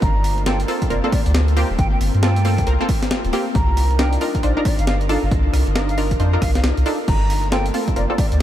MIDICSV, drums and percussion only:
0, 0, Header, 1, 2, 480
1, 0, Start_track
1, 0, Key_signature, -2, "minor"
1, 0, Tempo, 441176
1, 23, Time_signature, 4, 2, 24, 8
1, 9162, End_track
2, 0, Start_track
2, 0, Title_t, "Drums"
2, 22, Note_on_c, 9, 36, 118
2, 24, Note_on_c, 9, 42, 65
2, 131, Note_off_c, 9, 36, 0
2, 132, Note_off_c, 9, 42, 0
2, 263, Note_on_c, 9, 46, 105
2, 372, Note_off_c, 9, 46, 0
2, 412, Note_on_c, 9, 42, 37
2, 504, Note_on_c, 9, 38, 115
2, 520, Note_off_c, 9, 42, 0
2, 612, Note_off_c, 9, 38, 0
2, 651, Note_on_c, 9, 42, 65
2, 743, Note_on_c, 9, 46, 102
2, 759, Note_off_c, 9, 42, 0
2, 852, Note_off_c, 9, 46, 0
2, 891, Note_on_c, 9, 36, 63
2, 891, Note_on_c, 9, 42, 70
2, 984, Note_off_c, 9, 42, 0
2, 984, Note_on_c, 9, 42, 69
2, 1000, Note_off_c, 9, 36, 0
2, 1093, Note_off_c, 9, 42, 0
2, 1223, Note_on_c, 9, 36, 105
2, 1223, Note_on_c, 9, 46, 99
2, 1332, Note_off_c, 9, 36, 0
2, 1332, Note_off_c, 9, 46, 0
2, 1372, Note_on_c, 9, 42, 68
2, 1464, Note_on_c, 9, 38, 122
2, 1480, Note_off_c, 9, 42, 0
2, 1573, Note_off_c, 9, 38, 0
2, 1612, Note_on_c, 9, 42, 55
2, 1705, Note_on_c, 9, 46, 103
2, 1721, Note_off_c, 9, 42, 0
2, 1814, Note_off_c, 9, 46, 0
2, 1943, Note_on_c, 9, 36, 115
2, 1944, Note_on_c, 9, 42, 68
2, 2052, Note_off_c, 9, 36, 0
2, 2053, Note_off_c, 9, 42, 0
2, 2185, Note_on_c, 9, 46, 105
2, 2293, Note_off_c, 9, 46, 0
2, 2334, Note_on_c, 9, 42, 39
2, 2424, Note_on_c, 9, 38, 114
2, 2443, Note_off_c, 9, 42, 0
2, 2533, Note_off_c, 9, 38, 0
2, 2572, Note_on_c, 9, 42, 69
2, 2664, Note_on_c, 9, 46, 106
2, 2681, Note_off_c, 9, 42, 0
2, 2773, Note_off_c, 9, 46, 0
2, 2811, Note_on_c, 9, 36, 61
2, 2811, Note_on_c, 9, 42, 71
2, 2902, Note_off_c, 9, 42, 0
2, 2902, Note_on_c, 9, 42, 73
2, 2919, Note_off_c, 9, 36, 0
2, 3011, Note_off_c, 9, 42, 0
2, 3142, Note_on_c, 9, 36, 102
2, 3142, Note_on_c, 9, 46, 102
2, 3250, Note_off_c, 9, 46, 0
2, 3251, Note_off_c, 9, 36, 0
2, 3292, Note_on_c, 9, 38, 61
2, 3292, Note_on_c, 9, 42, 73
2, 3383, Note_off_c, 9, 38, 0
2, 3383, Note_on_c, 9, 38, 115
2, 3400, Note_off_c, 9, 42, 0
2, 3491, Note_off_c, 9, 38, 0
2, 3531, Note_on_c, 9, 42, 54
2, 3622, Note_on_c, 9, 46, 101
2, 3640, Note_off_c, 9, 42, 0
2, 3731, Note_off_c, 9, 46, 0
2, 3862, Note_on_c, 9, 36, 115
2, 3862, Note_on_c, 9, 42, 69
2, 3971, Note_off_c, 9, 36, 0
2, 3971, Note_off_c, 9, 42, 0
2, 4102, Note_on_c, 9, 46, 112
2, 4211, Note_off_c, 9, 46, 0
2, 4250, Note_on_c, 9, 42, 41
2, 4342, Note_on_c, 9, 38, 114
2, 4359, Note_off_c, 9, 42, 0
2, 4450, Note_off_c, 9, 38, 0
2, 4489, Note_on_c, 9, 42, 71
2, 4581, Note_on_c, 9, 46, 116
2, 4598, Note_off_c, 9, 42, 0
2, 4690, Note_off_c, 9, 46, 0
2, 4730, Note_on_c, 9, 36, 58
2, 4731, Note_on_c, 9, 42, 69
2, 4822, Note_off_c, 9, 42, 0
2, 4822, Note_on_c, 9, 42, 72
2, 4839, Note_off_c, 9, 36, 0
2, 4931, Note_off_c, 9, 42, 0
2, 5061, Note_on_c, 9, 46, 109
2, 5062, Note_on_c, 9, 36, 101
2, 5170, Note_off_c, 9, 46, 0
2, 5171, Note_off_c, 9, 36, 0
2, 5210, Note_on_c, 9, 42, 71
2, 5302, Note_on_c, 9, 38, 115
2, 5319, Note_off_c, 9, 42, 0
2, 5411, Note_off_c, 9, 38, 0
2, 5450, Note_on_c, 9, 42, 53
2, 5542, Note_on_c, 9, 46, 109
2, 5559, Note_off_c, 9, 42, 0
2, 5650, Note_off_c, 9, 46, 0
2, 5782, Note_on_c, 9, 36, 110
2, 5782, Note_on_c, 9, 42, 69
2, 5891, Note_off_c, 9, 36, 0
2, 5891, Note_off_c, 9, 42, 0
2, 6022, Note_on_c, 9, 37, 53
2, 6022, Note_on_c, 9, 46, 111
2, 6131, Note_off_c, 9, 37, 0
2, 6131, Note_off_c, 9, 46, 0
2, 6171, Note_on_c, 9, 42, 40
2, 6262, Note_on_c, 9, 38, 116
2, 6280, Note_off_c, 9, 42, 0
2, 6371, Note_off_c, 9, 38, 0
2, 6410, Note_on_c, 9, 42, 68
2, 6503, Note_on_c, 9, 46, 114
2, 6518, Note_off_c, 9, 42, 0
2, 6612, Note_off_c, 9, 46, 0
2, 6649, Note_on_c, 9, 42, 71
2, 6650, Note_on_c, 9, 36, 60
2, 6742, Note_off_c, 9, 42, 0
2, 6742, Note_on_c, 9, 42, 71
2, 6759, Note_off_c, 9, 36, 0
2, 6851, Note_off_c, 9, 42, 0
2, 6983, Note_on_c, 9, 36, 103
2, 6983, Note_on_c, 9, 37, 54
2, 6983, Note_on_c, 9, 46, 114
2, 7091, Note_off_c, 9, 36, 0
2, 7092, Note_off_c, 9, 37, 0
2, 7092, Note_off_c, 9, 46, 0
2, 7130, Note_on_c, 9, 38, 60
2, 7130, Note_on_c, 9, 42, 71
2, 7221, Note_off_c, 9, 38, 0
2, 7221, Note_on_c, 9, 38, 119
2, 7239, Note_off_c, 9, 42, 0
2, 7329, Note_off_c, 9, 38, 0
2, 7370, Note_on_c, 9, 42, 55
2, 7462, Note_on_c, 9, 46, 113
2, 7479, Note_off_c, 9, 42, 0
2, 7571, Note_off_c, 9, 46, 0
2, 7703, Note_on_c, 9, 36, 118
2, 7703, Note_on_c, 9, 42, 65
2, 7703, Note_on_c, 9, 49, 76
2, 7812, Note_off_c, 9, 36, 0
2, 7812, Note_off_c, 9, 42, 0
2, 7812, Note_off_c, 9, 49, 0
2, 7942, Note_on_c, 9, 46, 112
2, 8051, Note_off_c, 9, 46, 0
2, 8091, Note_on_c, 9, 42, 38
2, 8182, Note_on_c, 9, 38, 120
2, 8200, Note_off_c, 9, 42, 0
2, 8290, Note_off_c, 9, 38, 0
2, 8330, Note_on_c, 9, 42, 68
2, 8422, Note_on_c, 9, 46, 113
2, 8439, Note_off_c, 9, 42, 0
2, 8531, Note_off_c, 9, 46, 0
2, 8570, Note_on_c, 9, 42, 66
2, 8571, Note_on_c, 9, 36, 64
2, 8664, Note_off_c, 9, 42, 0
2, 8664, Note_on_c, 9, 42, 70
2, 8680, Note_off_c, 9, 36, 0
2, 8772, Note_off_c, 9, 42, 0
2, 8903, Note_on_c, 9, 36, 108
2, 8903, Note_on_c, 9, 46, 105
2, 9011, Note_off_c, 9, 46, 0
2, 9012, Note_off_c, 9, 36, 0
2, 9051, Note_on_c, 9, 42, 70
2, 9160, Note_off_c, 9, 42, 0
2, 9162, End_track
0, 0, End_of_file